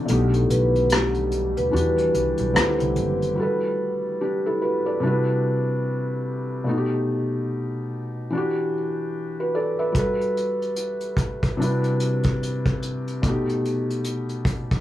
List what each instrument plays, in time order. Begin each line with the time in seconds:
Already playing: felt piano C3 F#4, ambient pad F#5
0.06 upright bass B1, felt piano B2 A3, ambient pad D#3 G3 A3, closed hi-hat
0.10 felt piano D#4 G4
0.34 vibraphone A4, closed hi-hat
0.50 upright bass B1, vibraphone B4, closed hi-hat
0.75 closed hi-hat
0.90 vibraphone G4, cross-stick, closed hi-hat
1.14 closed hi-hat
1.31 closed hi-hat
1.57 upright bass D#2, vibraphone B4, closed hi-hat
1.71 upright bass E2, felt piano E3 D4 F#4 G4, ambient pad D4
1.76 closed hi-hat
1.98 closed hi-hat
2.14 upright bass C2, closed hi-hat
2.37 upright bass B1, closed hi-hat
2.54 upright bass D2, felt piano D3 C4 E4 G4, cross-stick, closed hi-hat
2.80 upright bass C2, closed hi-hat
2.96 upright bass F#1, closed hi-hat
3.22 closed hi-hat
3.36 felt piano G3 F#4
3.40 felt piano A4 B4
4.21 felt piano D4 G4
4.46 felt piano E4 A4
4.62 felt piano F#4 B4
4.86 felt piano A4 D5
5.00 felt piano C3 G3 D4
5.04 felt piano E4 F#4 B4
6.64 felt piano B2 A3
6.69 felt piano D#4 F#4
6.78 felt piano G4
8.30 felt piano E3 D4
8.35 felt piano F#4 G4
9.40 felt piano F#4 B4
9.55 felt piano A4 D5
9.79 felt piano B4 E5
9.92 felt piano G3 F#4, kick, closed hi-hat
9.96 felt piano A4 B4
10.21 closed hi-hat
10.37 closed hi-hat
10.62 closed hi-hat
10.76 closed hi-hat
11.00 closed hi-hat
11.17 kick, closed hi-hat
11.43 kick, closed hi-hat
11.57 felt piano C3 G3 D4 E4
11.61 felt piano F#4 B4, closed hi-hat
11.84 closed hi-hat
12.00 closed hi-hat
12.23 kick, closed hi-hat
12.43 closed hi-hat
12.66 kick, closed hi-hat
12.82 closed hi-hat
13.07 closed hi-hat
13.22 felt piano B2 A3, kick, closed hi-hat
13.27 felt piano D#4 G4
13.49 closed hi-hat
13.65 closed hi-hat
13.90 closed hi-hat
14.04 closed hi-hat
14.29 closed hi-hat
14.45 kick, closed hi-hat
14.71 kick, closed hi-hat